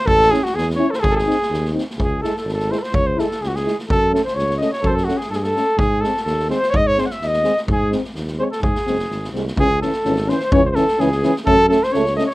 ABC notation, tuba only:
X:1
M:2/4
L:1/8
Q:1/4=126
K:none
V:1 name="Tuba" clef=bass
A,,,2 E,,2 | ^G,,,2 ^D,,2 | ^C,,2 ^G,,,2 | ^C,,2 C,,2 |
^F,,2 ^C,,2 | ^F,,2 G,,2 | ^G,,2 ^D,,2 | ^G,,2 ^D,,2 |
^G,,2 ^D,,2 | ^G,, ^F,,, ^G,,, ^B,,, | ^C,,2 ^G,,,2 | ^C,,2 C,,2 |
^F,,2 ^C,,2 |]